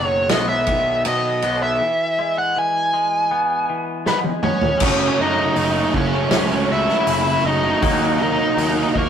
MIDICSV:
0, 0, Header, 1, 8, 480
1, 0, Start_track
1, 0, Tempo, 752823
1, 1156, Time_signature, 4, 2, 24, 8
1, 5798, End_track
2, 0, Start_track
2, 0, Title_t, "Lead electric guitar"
2, 0, Program_c, 0, 29
2, 0, Note_on_c, 0, 73, 89
2, 190, Note_off_c, 0, 73, 0
2, 192, Note_on_c, 0, 75, 98
2, 305, Note_off_c, 0, 75, 0
2, 312, Note_on_c, 0, 76, 89
2, 648, Note_off_c, 0, 76, 0
2, 684, Note_on_c, 0, 75, 94
2, 1015, Note_off_c, 0, 75, 0
2, 1037, Note_on_c, 0, 76, 101
2, 1518, Note_off_c, 0, 76, 0
2, 1520, Note_on_c, 0, 78, 104
2, 1642, Note_off_c, 0, 78, 0
2, 1647, Note_on_c, 0, 80, 96
2, 2576, Note_off_c, 0, 80, 0
2, 2599, Note_on_c, 0, 71, 85
2, 2604, Note_on_c, 0, 59, 61
2, 2664, Note_off_c, 0, 71, 0
2, 2668, Note_off_c, 0, 59, 0
2, 2827, Note_on_c, 0, 61, 67
2, 2829, Note_on_c, 0, 73, 74
2, 3286, Note_off_c, 0, 61, 0
2, 3320, Note_off_c, 0, 73, 0
2, 3323, Note_on_c, 0, 75, 94
2, 3327, Note_on_c, 0, 63, 74
2, 3773, Note_off_c, 0, 75, 0
2, 3775, Note_off_c, 0, 63, 0
2, 3804, Note_on_c, 0, 61, 81
2, 3806, Note_on_c, 0, 73, 74
2, 4253, Note_off_c, 0, 73, 0
2, 4254, Note_off_c, 0, 61, 0
2, 4284, Note_on_c, 0, 76, 100
2, 4291, Note_on_c, 0, 64, 82
2, 4736, Note_off_c, 0, 64, 0
2, 4757, Note_on_c, 0, 75, 98
2, 4763, Note_on_c, 0, 63, 76
2, 4773, Note_off_c, 0, 76, 0
2, 5212, Note_off_c, 0, 63, 0
2, 5234, Note_off_c, 0, 75, 0
2, 5239, Note_on_c, 0, 63, 80
2, 5243, Note_on_c, 0, 75, 92
2, 5690, Note_off_c, 0, 63, 0
2, 5720, Note_on_c, 0, 70, 99
2, 5728, Note_on_c, 0, 58, 63
2, 5730, Note_off_c, 0, 75, 0
2, 5798, Note_off_c, 0, 58, 0
2, 5798, Note_off_c, 0, 70, 0
2, 5798, End_track
3, 0, Start_track
3, 0, Title_t, "Distorted electric guitar"
3, 0, Program_c, 1, 30
3, 3082, Note_on_c, 1, 66, 108
3, 3186, Note_off_c, 1, 66, 0
3, 3189, Note_on_c, 1, 66, 82
3, 3196, Note_on_c, 1, 61, 69
3, 3198, Note_on_c, 1, 57, 72
3, 3200, Note_on_c, 1, 54, 66
3, 3306, Note_off_c, 1, 54, 0
3, 3306, Note_off_c, 1, 57, 0
3, 3310, Note_off_c, 1, 61, 0
3, 3319, Note_off_c, 1, 66, 0
3, 3321, Note_on_c, 1, 66, 78
3, 3559, Note_off_c, 1, 66, 0
3, 3562, Note_on_c, 1, 66, 106
3, 3796, Note_off_c, 1, 66, 0
3, 3908, Note_on_c, 1, 66, 65
3, 4152, Note_off_c, 1, 66, 0
3, 4155, Note_on_c, 1, 66, 74
3, 4275, Note_on_c, 1, 54, 81
3, 4280, Note_on_c, 1, 57, 77
3, 4282, Note_on_c, 1, 61, 81
3, 4284, Note_off_c, 1, 66, 0
3, 4286, Note_on_c, 1, 66, 84
3, 4516, Note_off_c, 1, 57, 0
3, 4519, Note_off_c, 1, 54, 0
3, 4520, Note_off_c, 1, 61, 0
3, 4527, Note_off_c, 1, 66, 0
3, 4529, Note_on_c, 1, 66, 97
3, 4630, Note_off_c, 1, 66, 0
3, 4632, Note_on_c, 1, 66, 65
3, 4758, Note_off_c, 1, 66, 0
3, 4761, Note_on_c, 1, 66, 95
3, 4870, Note_off_c, 1, 66, 0
3, 4872, Note_on_c, 1, 66, 73
3, 5110, Note_on_c, 1, 63, 72
3, 5118, Note_on_c, 1, 58, 73
3, 5121, Note_on_c, 1, 54, 58
3, 5229, Note_off_c, 1, 54, 0
3, 5229, Note_off_c, 1, 58, 0
3, 5236, Note_off_c, 1, 63, 0
3, 5798, Note_off_c, 1, 66, 0
3, 5798, End_track
4, 0, Start_track
4, 0, Title_t, "Distorted electric guitar"
4, 0, Program_c, 2, 30
4, 3067, Note_on_c, 2, 42, 92
4, 3069, Note_on_c, 2, 49, 90
4, 3075, Note_on_c, 2, 54, 94
4, 3077, Note_on_c, 2, 57, 103
4, 3077, Note_on_c, 2, 61, 102
4, 3080, Note_on_c, 2, 69, 105
4, 3300, Note_off_c, 2, 54, 0
4, 3301, Note_off_c, 2, 57, 0
4, 3303, Note_on_c, 2, 54, 66
4, 3307, Note_off_c, 2, 61, 0
4, 3308, Note_off_c, 2, 69, 0
4, 3308, Note_on_c, 2, 57, 80
4, 3314, Note_on_c, 2, 61, 84
4, 3316, Note_on_c, 2, 69, 82
4, 3538, Note_off_c, 2, 42, 0
4, 3540, Note_off_c, 2, 49, 0
4, 3546, Note_off_c, 2, 57, 0
4, 3546, Note_on_c, 2, 42, 94
4, 3547, Note_on_c, 2, 49, 88
4, 3550, Note_off_c, 2, 54, 0
4, 3550, Note_off_c, 2, 61, 0
4, 3553, Note_off_c, 2, 69, 0
4, 3553, Note_on_c, 2, 54, 94
4, 3553, Note_on_c, 2, 57, 90
4, 3558, Note_on_c, 2, 61, 90
4, 3561, Note_on_c, 2, 69, 106
4, 3656, Note_off_c, 2, 69, 0
4, 3663, Note_off_c, 2, 61, 0
4, 3664, Note_on_c, 2, 69, 77
4, 3668, Note_off_c, 2, 57, 0
4, 3670, Note_on_c, 2, 61, 68
4, 3675, Note_off_c, 2, 54, 0
4, 3676, Note_on_c, 2, 57, 71
4, 3677, Note_on_c, 2, 54, 61
4, 3778, Note_off_c, 2, 61, 0
4, 3780, Note_off_c, 2, 54, 0
4, 3780, Note_off_c, 2, 57, 0
4, 3782, Note_off_c, 2, 69, 0
4, 3907, Note_on_c, 2, 69, 69
4, 3910, Note_off_c, 2, 42, 0
4, 3911, Note_off_c, 2, 49, 0
4, 3913, Note_on_c, 2, 61, 69
4, 3916, Note_on_c, 2, 57, 64
4, 3922, Note_on_c, 2, 54, 58
4, 4135, Note_off_c, 2, 69, 0
4, 4139, Note_off_c, 2, 61, 0
4, 4143, Note_on_c, 2, 69, 77
4, 4145, Note_off_c, 2, 57, 0
4, 4146, Note_on_c, 2, 61, 67
4, 4152, Note_on_c, 2, 57, 67
4, 4153, Note_off_c, 2, 54, 0
4, 4155, Note_on_c, 2, 54, 65
4, 4372, Note_off_c, 2, 69, 0
4, 4379, Note_off_c, 2, 61, 0
4, 4380, Note_on_c, 2, 69, 75
4, 4382, Note_off_c, 2, 57, 0
4, 4387, Note_on_c, 2, 61, 76
4, 4389, Note_on_c, 2, 57, 61
4, 4393, Note_off_c, 2, 54, 0
4, 4396, Note_on_c, 2, 54, 62
4, 4501, Note_off_c, 2, 57, 0
4, 4501, Note_on_c, 2, 42, 89
4, 4504, Note_off_c, 2, 61, 0
4, 4504, Note_on_c, 2, 49, 91
4, 4506, Note_off_c, 2, 54, 0
4, 4507, Note_off_c, 2, 69, 0
4, 4508, Note_on_c, 2, 54, 97
4, 4509, Note_on_c, 2, 57, 90
4, 4512, Note_on_c, 2, 61, 89
4, 4514, Note_on_c, 2, 69, 93
4, 4612, Note_off_c, 2, 69, 0
4, 4619, Note_off_c, 2, 61, 0
4, 4620, Note_on_c, 2, 69, 69
4, 4621, Note_off_c, 2, 57, 0
4, 4626, Note_on_c, 2, 61, 65
4, 4629, Note_on_c, 2, 57, 57
4, 4632, Note_off_c, 2, 54, 0
4, 4634, Note_on_c, 2, 54, 56
4, 4740, Note_off_c, 2, 54, 0
4, 4741, Note_off_c, 2, 57, 0
4, 4743, Note_on_c, 2, 54, 73
4, 4745, Note_off_c, 2, 61, 0
4, 4749, Note_off_c, 2, 69, 0
4, 4749, Note_on_c, 2, 57, 65
4, 4753, Note_on_c, 2, 61, 71
4, 4757, Note_on_c, 2, 69, 80
4, 4857, Note_off_c, 2, 69, 0
4, 4860, Note_off_c, 2, 61, 0
4, 4863, Note_off_c, 2, 57, 0
4, 4865, Note_on_c, 2, 69, 72
4, 4867, Note_off_c, 2, 42, 0
4, 4868, Note_off_c, 2, 49, 0
4, 4868, Note_on_c, 2, 61, 64
4, 4871, Note_on_c, 2, 57, 64
4, 4875, Note_off_c, 2, 54, 0
4, 4878, Note_on_c, 2, 54, 61
4, 4974, Note_off_c, 2, 69, 0
4, 4976, Note_off_c, 2, 61, 0
4, 4978, Note_off_c, 2, 57, 0
4, 4984, Note_on_c, 2, 51, 99
4, 4987, Note_off_c, 2, 54, 0
4, 4989, Note_on_c, 2, 54, 98
4, 4996, Note_on_c, 2, 58, 97
4, 4999, Note_on_c, 2, 63, 105
4, 5221, Note_off_c, 2, 51, 0
4, 5228, Note_on_c, 2, 51, 72
4, 5234, Note_off_c, 2, 54, 0
4, 5234, Note_off_c, 2, 58, 0
4, 5236, Note_on_c, 2, 54, 81
4, 5240, Note_off_c, 2, 63, 0
4, 5241, Note_on_c, 2, 58, 84
4, 5242, Note_on_c, 2, 63, 77
4, 5457, Note_off_c, 2, 51, 0
4, 5464, Note_on_c, 2, 51, 93
4, 5466, Note_off_c, 2, 58, 0
4, 5467, Note_off_c, 2, 54, 0
4, 5470, Note_on_c, 2, 54, 97
4, 5474, Note_on_c, 2, 58, 98
4, 5476, Note_off_c, 2, 63, 0
4, 5478, Note_on_c, 2, 63, 84
4, 5584, Note_off_c, 2, 63, 0
4, 5586, Note_off_c, 2, 58, 0
4, 5587, Note_on_c, 2, 63, 77
4, 5594, Note_on_c, 2, 58, 74
4, 5598, Note_off_c, 2, 54, 0
4, 5600, Note_on_c, 2, 54, 64
4, 5702, Note_off_c, 2, 51, 0
4, 5707, Note_off_c, 2, 58, 0
4, 5711, Note_off_c, 2, 54, 0
4, 5715, Note_off_c, 2, 63, 0
4, 5798, End_track
5, 0, Start_track
5, 0, Title_t, "Clean electric guitar"
5, 0, Program_c, 3, 27
5, 0, Note_on_c, 3, 47, 77
5, 0, Note_on_c, 3, 51, 66
5, 0, Note_on_c, 3, 54, 67
5, 194, Note_on_c, 3, 59, 73
5, 425, Note_off_c, 3, 51, 0
5, 432, Note_on_c, 3, 51, 63
5, 437, Note_off_c, 3, 47, 0
5, 664, Note_off_c, 3, 54, 0
5, 672, Note_on_c, 3, 54, 70
5, 905, Note_off_c, 3, 59, 0
5, 912, Note_on_c, 3, 59, 65
5, 1152, Note_off_c, 3, 51, 0
5, 1154, Note_off_c, 3, 54, 0
5, 1154, Note_off_c, 3, 59, 0
5, 1154, Note_on_c, 3, 52, 73
5, 1395, Note_on_c, 3, 56, 75
5, 1627, Note_off_c, 3, 52, 0
5, 1635, Note_on_c, 3, 52, 64
5, 1864, Note_off_c, 3, 56, 0
5, 1871, Note_on_c, 3, 56, 67
5, 2111, Note_on_c, 3, 59, 71
5, 2348, Note_off_c, 3, 52, 0
5, 2356, Note_on_c, 3, 52, 64
5, 2584, Note_off_c, 3, 56, 0
5, 2592, Note_on_c, 3, 56, 73
5, 2828, Note_off_c, 3, 59, 0
5, 2836, Note_on_c, 3, 59, 68
5, 3070, Note_off_c, 3, 52, 0
5, 3072, Note_on_c, 3, 49, 104
5, 3073, Note_off_c, 3, 56, 0
5, 3073, Note_on_c, 3, 42, 80
5, 3076, Note_off_c, 3, 59, 0
5, 3076, Note_on_c, 3, 54, 104
5, 3299, Note_off_c, 3, 49, 0
5, 3300, Note_off_c, 3, 42, 0
5, 3301, Note_off_c, 3, 54, 0
5, 3309, Note_on_c, 3, 42, 76
5, 3310, Note_on_c, 3, 49, 79
5, 3528, Note_off_c, 3, 42, 0
5, 3529, Note_off_c, 3, 49, 0
5, 3545, Note_on_c, 3, 42, 69
5, 3548, Note_on_c, 3, 49, 83
5, 3766, Note_off_c, 3, 42, 0
5, 3768, Note_off_c, 3, 49, 0
5, 3790, Note_on_c, 3, 42, 80
5, 3791, Note_on_c, 3, 49, 71
5, 4008, Note_off_c, 3, 42, 0
5, 4009, Note_off_c, 3, 49, 0
5, 4033, Note_on_c, 3, 42, 77
5, 4035, Note_on_c, 3, 49, 81
5, 4250, Note_off_c, 3, 42, 0
5, 4250, Note_off_c, 3, 49, 0
5, 4267, Note_on_c, 3, 42, 71
5, 4268, Note_on_c, 3, 49, 72
5, 4487, Note_off_c, 3, 42, 0
5, 4487, Note_off_c, 3, 49, 0
5, 4509, Note_on_c, 3, 42, 74
5, 4510, Note_on_c, 3, 49, 80
5, 4727, Note_off_c, 3, 42, 0
5, 4728, Note_off_c, 3, 49, 0
5, 4744, Note_on_c, 3, 42, 77
5, 4749, Note_on_c, 3, 49, 80
5, 4965, Note_off_c, 3, 42, 0
5, 4967, Note_off_c, 3, 49, 0
5, 4987, Note_on_c, 3, 51, 84
5, 4989, Note_on_c, 3, 54, 103
5, 4991, Note_on_c, 3, 58, 93
5, 5215, Note_off_c, 3, 51, 0
5, 5216, Note_off_c, 3, 54, 0
5, 5217, Note_off_c, 3, 58, 0
5, 5230, Note_on_c, 3, 51, 80
5, 5232, Note_on_c, 3, 54, 84
5, 5447, Note_off_c, 3, 51, 0
5, 5448, Note_off_c, 3, 54, 0
5, 5466, Note_on_c, 3, 51, 74
5, 5468, Note_on_c, 3, 54, 83
5, 5685, Note_off_c, 3, 51, 0
5, 5686, Note_off_c, 3, 54, 0
5, 5707, Note_on_c, 3, 51, 66
5, 5712, Note_on_c, 3, 54, 75
5, 5798, Note_off_c, 3, 51, 0
5, 5798, Note_off_c, 3, 54, 0
5, 5798, End_track
6, 0, Start_track
6, 0, Title_t, "Picked electric bass"
6, 0, Program_c, 4, 34
6, 0, Note_on_c, 4, 30, 92
6, 180, Note_off_c, 4, 30, 0
6, 194, Note_on_c, 4, 35, 76
6, 650, Note_off_c, 4, 35, 0
6, 676, Note_on_c, 4, 47, 86
6, 898, Note_off_c, 4, 47, 0
6, 916, Note_on_c, 4, 35, 84
6, 1138, Note_off_c, 4, 35, 0
6, 3069, Note_on_c, 4, 30, 90
6, 3248, Note_off_c, 4, 30, 0
6, 3313, Note_on_c, 4, 42, 75
6, 3490, Note_off_c, 4, 42, 0
6, 3551, Note_on_c, 4, 30, 91
6, 3729, Note_off_c, 4, 30, 0
6, 3787, Note_on_c, 4, 30, 94
6, 3967, Note_off_c, 4, 30, 0
6, 4029, Note_on_c, 4, 37, 79
6, 4384, Note_off_c, 4, 37, 0
6, 4509, Note_on_c, 4, 30, 81
6, 4688, Note_off_c, 4, 30, 0
6, 4746, Note_on_c, 4, 30, 88
6, 4926, Note_off_c, 4, 30, 0
6, 4992, Note_on_c, 4, 39, 88
6, 5346, Note_off_c, 4, 39, 0
6, 5467, Note_on_c, 4, 39, 93
6, 5645, Note_off_c, 4, 39, 0
6, 5713, Note_on_c, 4, 39, 87
6, 5798, Note_off_c, 4, 39, 0
6, 5798, End_track
7, 0, Start_track
7, 0, Title_t, "Muted distorted electric guitar strokes"
7, 3782, Note_on_c, 9, 29, 47
7, 3846, Note_off_c, 9, 29, 0
7, 5709, Note_on_c, 9, 29, 45
7, 5773, Note_off_c, 9, 29, 0
7, 5798, End_track
8, 0, Start_track
8, 0, Title_t, "Drums"
8, 187, Note_on_c, 9, 51, 84
8, 189, Note_on_c, 9, 38, 110
8, 250, Note_off_c, 9, 51, 0
8, 253, Note_off_c, 9, 38, 0
8, 424, Note_on_c, 9, 51, 60
8, 430, Note_on_c, 9, 36, 77
8, 488, Note_off_c, 9, 51, 0
8, 493, Note_off_c, 9, 36, 0
8, 668, Note_on_c, 9, 51, 88
8, 732, Note_off_c, 9, 51, 0
8, 907, Note_on_c, 9, 51, 62
8, 971, Note_off_c, 9, 51, 0
8, 2590, Note_on_c, 9, 38, 65
8, 2654, Note_off_c, 9, 38, 0
8, 2705, Note_on_c, 9, 48, 62
8, 2768, Note_off_c, 9, 48, 0
8, 2823, Note_on_c, 9, 45, 85
8, 2887, Note_off_c, 9, 45, 0
8, 2943, Note_on_c, 9, 43, 90
8, 3006, Note_off_c, 9, 43, 0
8, 3061, Note_on_c, 9, 49, 125
8, 3067, Note_on_c, 9, 36, 119
8, 3125, Note_off_c, 9, 49, 0
8, 3131, Note_off_c, 9, 36, 0
8, 3545, Note_on_c, 9, 46, 61
8, 3608, Note_off_c, 9, 46, 0
8, 3789, Note_on_c, 9, 36, 77
8, 3852, Note_off_c, 9, 36, 0
8, 4021, Note_on_c, 9, 46, 58
8, 4024, Note_on_c, 9, 38, 103
8, 4085, Note_off_c, 9, 46, 0
8, 4087, Note_off_c, 9, 38, 0
8, 4393, Note_on_c, 9, 38, 33
8, 4457, Note_off_c, 9, 38, 0
8, 4506, Note_on_c, 9, 46, 69
8, 4570, Note_off_c, 9, 46, 0
8, 4988, Note_on_c, 9, 46, 63
8, 4990, Note_on_c, 9, 36, 118
8, 5052, Note_off_c, 9, 46, 0
8, 5054, Note_off_c, 9, 36, 0
8, 5471, Note_on_c, 9, 46, 68
8, 5535, Note_off_c, 9, 46, 0
8, 5709, Note_on_c, 9, 36, 78
8, 5773, Note_off_c, 9, 36, 0
8, 5798, End_track
0, 0, End_of_file